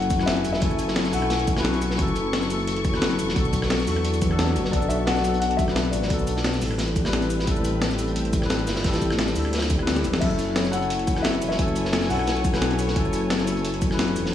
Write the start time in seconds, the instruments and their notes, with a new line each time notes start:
Already playing: detuned saw bass F#1, tine electric piano F#3 C#4 E4 A4, string section E4 A4 G#5 C#6, grand piano F#5
0.02 closed hi-hat
0.10 kick, closed hi-hat, shaker
0.16 tine electric piano F#3 C#4, cross-stick, snare
0.21 tine electric piano E4 B4
0.26 grand piano E5, snare, closed hi-hat
0.36 closed hi-hat
0.45 detuned saw bass E1, closed hi-hat, shaker
0.53 grand piano E5, snare
0.59 detuned saw bass F#1, tine electric piano F#3 C#4, kick, closed hi-hat
0.63 tine electric piano E4 A4
0.71 shaker
0.79 closed hi-hat, shaker
0.88 snare
0.96 snare, closed hi-hat, open hi-hat
1.05 snare, shaker
1.10 detuned saw bass B1, tine electric piano F#3 C#4, grand piano F#5, closed hi-hat, open hi-hat, shaker
1.14 tine electric piano E4 A4
1.22 cross-stick
1.30 snare, closed hi-hat
1.39 closed hi-hat
1.48 kick, closed hi-hat, shaker
1.53 tine electric piano F#3 C#4, cross-stick, snare, closed hi-hat
1.58 tine electric piano E4 B4
1.65 snare, closed hi-hat
1.74 closed hi-hat
1.82 closed hi-hat, shaker
1.91 snare
1.96 detuned saw bass F#1, tine electric piano F#3 C#4, kick, closed hi-hat
2.00 tine electric piano E4 A4
2.08 shaker
2.15 closed hi-hat, shaker
2.33 snare, closed hi-hat
2.42 snare, shaker
2.47 tine electric piano F#3 C#4, closed hi-hat, shaker
2.52 tine electric piano E4 A4
2.59 closed hi-hat
2.67 closed hi-hat
2.76 closed hi-hat
2.84 kick, closed hi-hat, shaker
2.90 tine electric piano F#3 C#4, cross-stick, snare
2.95 tine electric piano E4 B4
3.02 snare, closed hi-hat
3.11 closed hi-hat
3.19 detuned saw bass E1, closed hi-hat, shaker
3.29 snare
3.33 detuned saw bass B1, tine electric piano F#3 B3, string section D4 F#4, kick, closed hi-hat
3.37 tine electric piano D4 A4
3.45 shaker
3.53 kick, closed hi-hat, shaker
3.62 cross-stick, snare
3.70 snare, closed hi-hat, open hi-hat
3.79 snare, shaker
3.84 detuned saw bass E2, tine electric piano F#3 B3, closed hi-hat, open hi-hat, shaker
3.89 tine electric piano D4 A4
3.96 cross-stick
4.04 closed hi-hat
4.14 closed hi-hat, shaker
4.22 kick, closed hi-hat, shaker
4.29 tine electric piano F#3 B3 D4 A4, cross-stick
4.37 tine electric piano F#3 B3 D4 C#5, snare, closed hi-hat
4.48 closed hi-hat
4.56 detuned saw bass F#1, closed hi-hat, shaker
4.65 snare
4.70 detuned saw bass B1, tine electric piano F#3 B3, grand piano D5, kick, closed hi-hat
4.74 tine electric piano D4 A4
4.82 shaker
4.89 grand piano E5, closed hi-hat, shaker
5.06 grand piano F#5, snare, closed hi-hat
5.16 snare, shaker
5.21 tine electric piano F#3 B3, closed hi-hat, shaker
5.26 tine electric piano D4 A4
5.34 closed hi-hat
5.40 grand piano F#5, closed hi-hat
5.51 closed hi-hat
5.57 grand piano E5, kick, closed hi-hat, shaker
5.65 tine electric piano F#3 B3, cross-stick, snare
5.69 tine electric piano D4 B4
5.76 snare, closed hi-hat
5.85 closed hi-hat
5.91 detuned saw bass A1, grand piano D5, closed hi-hat, shaker
6.02 snare
6.07 detuned saw bass B1, tine electric piano F#3 B3, kick, closed hi-hat
6.11 tine electric piano D4 A4
6.19 shaker
6.27 closed hi-hat, shaker
6.37 snare
6.44 snare, closed hi-hat, open hi-hat
6.54 snare, shaker
6.58 detuned saw bass A1, tine electric piano G3 C4, string section C4 E4 G4 B4, closed hi-hat, open hi-hat, shaker
6.63 tine electric piano E4 A4
6.71 cross-stick
6.78 snare, closed hi-hat
6.88 closed hi-hat
6.96 kick, closed hi-hat, shaker
7.02 tine electric piano G3 C4, cross-stick, snare, closed hi-hat
7.06 tine electric piano E4 B4
7.13 snare, closed hi-hat
7.22 closed hi-hat
7.30 closed hi-hat, shaker
7.40 snare
7.44 detuned saw bass A1, tine electric piano G3 C4, kick, closed hi-hat
7.48 tine electric piano E4 A4
7.56 shaker
7.65 closed hi-hat, shaker
7.82 snare, closed hi-hat
7.91 snare, shaker
7.96 tine electric piano G3 C4, closed hi-hat, shaker
8.00 tine electric piano E4 A4
8.08 closed hi-hat
8.16 closed hi-hat
8.25 closed hi-hat
8.33 kick, closed hi-hat, shaker
8.39 tine electric piano G3 C4, cross-stick, snare
8.44 tine electric piano E4 B4
8.50 snare, closed hi-hat
8.59 closed hi-hat
8.67 detuned saw bass G1, snare, closed hi-hat, shaker
8.76 snare, closed hi-hat
8.81 detuned saw bass A1, tine electric piano G3 C4, kick, snare, closed hi-hat
8.86 tine electric piano E4 A4
8.93 snare, closed hi-hat, shaker
9.02 kick, closed hi-hat, shaker
9.10 cross-stick, snare
9.19 snare, closed hi-hat, open hi-hat
9.27 snare, closed hi-hat, shaker
9.33 detuned saw bass D2, tine electric piano G3 C4, closed hi-hat, open hi-hat, shaker
9.37 tine electric piano E4 A4
9.45 cross-stick
9.53 snare, closed hi-hat
9.58 snare, closed hi-hat
9.61 cross-stick, snare, closed hi-hat, shaker
9.70 kick, closed hi-hat, shaker
9.76 tine electric piano G3 C4, cross-stick
9.80 tine electric piano E4 B4
9.87 snare, closed hi-hat
9.96 snare, closed hi-hat, shaker
10.04 detuned saw bass E1, closed hi-hat, shaker
10.13 snare
10.18 detuned saw bass F#1, tine electric piano F#3 C#4, string section A4 C#5 G#5, grand piano E5, kick, closed hi-hat, crash
10.23 tine electric piano E4 A4
10.31 shaker
10.39 closed hi-hat, shaker
10.54 grand piano C#5, snare, closed hi-hat
10.65 snare, shaker
10.70 tine electric piano F#3 C#4, grand piano F#5, closed hi-hat, shaker
10.74 tine electric piano E4 A4
10.82 closed hi-hat
10.90 closed hi-hat
10.99 closed hi-hat
11.07 kick, closed hi-hat, shaker
11.13 tine electric piano F#3 C#4, cross-stick, snare
11.17 tine electric piano E4 B4
11.22 grand piano E5, snare, closed hi-hat
11.34 closed hi-hat
11.42 detuned saw bass E1, closed hi-hat, shaker
11.49 grand piano E5, snare
11.55 detuned saw bass F#1, tine electric piano F#3 C#4, kick, closed hi-hat
11.60 tine electric piano E4 A4
11.68 shaker
11.75 closed hi-hat, shaker
11.85 snare
11.93 snare, closed hi-hat, open hi-hat
12.02 grand piano G#5, snare, shaker
12.07 detuned saw bass B1, tine electric piano F#3 C#4, grand piano F#5, closed hi-hat, open hi-hat, shaker
12.11 tine electric piano E4 A4
12.19 cross-stick
12.27 snare, closed hi-hat
12.37 closed hi-hat
12.44 kick, closed hi-hat, shaker
12.50 tine electric piano F#3 C#4, cross-stick, snare, closed hi-hat
12.55 tine electric piano E4 B4
12.62 snare, closed hi-hat
12.70 closed hi-hat
12.79 closed hi-hat, shaker
12.88 snare
12.93 detuned saw bass F#1, tine electric piano F#3 C#4, kick, closed hi-hat
12.97 tine electric piano E4 A4
13.05 shaker
13.13 closed hi-hat, shaker
13.30 snare, closed hi-hat
13.39 snare, shaker
13.44 tine electric piano F#3 C#4, closed hi-hat, shaker
13.49 tine electric piano E4 A4
13.57 closed hi-hat
13.65 closed hi-hat
13.74 closed hi-hat
13.82 kick, closed hi-hat, shaker
13.88 tine electric piano F#3 C#4, cross-stick, snare
13.92 tine electric piano E4 B4
13.99 snare, closed hi-hat
14.08 closed hi-hat
14.16 detuned saw bass E1, closed hi-hat, shaker
14.26 snare
14.30 tine electric piano F#3